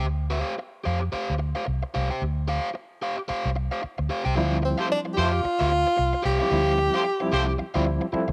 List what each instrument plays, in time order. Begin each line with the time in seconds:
0.05 fingered electric bass D2
0.30 overdriven electric guitar G4 C5 F5
0.58 muted overdriven electric guitar stroke
0.84 fingered electric bass F2, overdriven electric guitar G4 C5 F5
1.01 muted overdriven electric guitar stroke
1.12 overdriven electric guitar G4 C5 F5, muted fingered electric bass stroke
1.30 fingered electric bass D2
1.39 muted overdriven electric guitar stroke
1.55 overdriven electric guitar G4 C5 F5
1.65 fingered electric bass C2, muted overdriven electric guitar stroke
1.83 muted overdriven electric guitar stroke
1.94 fingered electric bass C2, overdriven electric guitar G4 C5 F5
2.10 overdriven electric guitar G4 C5 G5
2.22 fingered electric bass D2
2.48 overdriven electric guitar G4 C5 F5
2.74 muted overdriven electric guitar stroke
3.02 overdriven electric guitar G4 C5 F5
3.18 muted overdriven electric guitar stroke
3.28 overdriven electric guitar G4 C5 F5, muted fingered electric bass stroke
3.45 fingered electric bass C2
3.56 muted overdriven electric guitar stroke
3.71 overdriven electric guitar G4 C5 F5
3.82 muted overdriven electric guitar stroke, muted fingered electric bass stroke
3.98 fingered electric bass D2, muted overdriven electric guitar stroke
4.09 overdriven electric guitar G4 C5 F5
4.25 fingered electric bass C2, overdriven electric guitar G4 C5 G5
4.35 fingered electric bass D2, reed electric piano F3 G3 C4 E4, overdriven electric guitar G4 C5 F5
4.62 tenor saxophone C4, muted overdriven electric guitar stroke
4.78 horn section A3 G4 C5, overdriven electric guitar G4 C5 F5
4.90 tenor saxophone D4, muted overdriven electric guitar stroke
5.05 muted overdriven electric guitar stroke
5.13 tenor saxophone G4, overdriven electric guitar G4
5.18 fingered electric bass F2, horn section A3 G4 C5, tenor saxophone F4, overdriven electric guitar C5 F5
5.32 muted overdriven electric guitar stroke
5.43 muted overdriven electric guitar stroke, muted fingered electric bass stroke
5.59 fingered electric bass D2, overdriven electric guitar G4 C5 F5
5.72 muted overdriven electric guitar stroke
5.87 muted overdriven electric guitar stroke
5.97 fingered electric bass C2, muted overdriven electric guitar stroke
6.13 muted overdriven electric guitar stroke
6.22 fingered electric bass C2, overdriven electric guitar G4 C5 F5, tenor saxophone G4
6.39 reed electric piano F3 G3 C4 E4, overdriven electric guitar G4 C5 F5
6.50 fingered electric bass D2, reed electric piano F3 G3 C4 E4, overdriven electric guitar G4 C5 F5
6.78 muted overdriven electric guitar stroke
6.94 horn section A3 G4 C5, overdriven electric guitar G4 C5 F5
7.04 muted overdriven electric guitar stroke
7.20 reed electric piano F3 G3 C4 E4, muted overdriven electric guitar stroke
7.32 fingered electric bass C2, horn section A3 G4 C5, overdriven electric guitar G4 C5 F5
7.47 muted overdriven electric guitar stroke
7.59 muted overdriven electric guitar stroke, muted fingered electric bass stroke
7.74 fingered electric bass D2, reed electric piano F3 G3 C4 E4, overdriven electric guitar G4 C5 F5
7.86 muted overdriven electric guitar stroke
8.01 muted overdriven electric guitar stroke
8.13 reed electric piano F3 G3 C4 E4 A4, muted overdriven electric guitar stroke, muted fingered electric bass stroke
8.28 fingered electric bass D2, muted overdriven electric guitar stroke